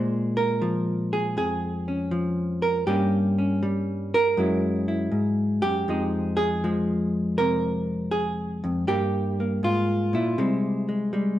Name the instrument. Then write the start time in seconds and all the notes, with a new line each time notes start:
hollow-body jazz guitar
Already playing: A#2 G#3 C5
0.37 A#4
0.62 F3
1.13 G#4
1.37 F2 G#4
1.88 C#4
2.11 F3
2.62 A#4
2.87 G2 G3 A#3 C#4 G4
3.38 C#4
3.63 G3
4.14 A#4
4.37 F#2 F#3 G#3 E4
4.88 E4
5.12 G#2
5.62 F#2 G4
5.88 F2 F3 G#3 D#4
6.37 G#4
6.64 F3 G#3
7.38 C3 A#4
8.11 G#4
8.64 F2
8.87 G2 G3 A#3 G4
9.40 A#3
9.63 G#2 F4
10.13 A#2 E4
10.38 C3 G3 G#3
10.89 G#3
11.13 G3 G#3